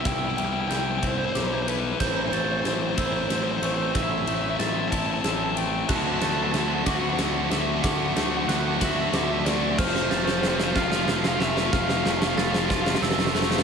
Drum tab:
CC |------------------------|x-----------------------|------------------------|x-----------------------|
RD |x---x---x---x---x---x---|----x---x---x---x---x---|x---x---x---x---x---x---|----x---x---x---x---x---|
SD |o-------o-------o-------|o-------o-------o-------|o-------o-------o-------|o---o---o---o---o---o---|
BD |o-----------o-----------|o-----------o-----------|o-----------o-----------|o-----------o-----------|

CC |------------------------|x-----------------------|------------------------|
RD |x---x---x---x---x---x---|------------------------|------------------------|
SD |o---o---o---o---o---o---|o-o-o-o-o-o-o-o-o-o-o-o-|o-o-o-o-o-o-o-oooooooooo|
BD |o-----------o-----------|o-----------o-----------|o-----------o-----------|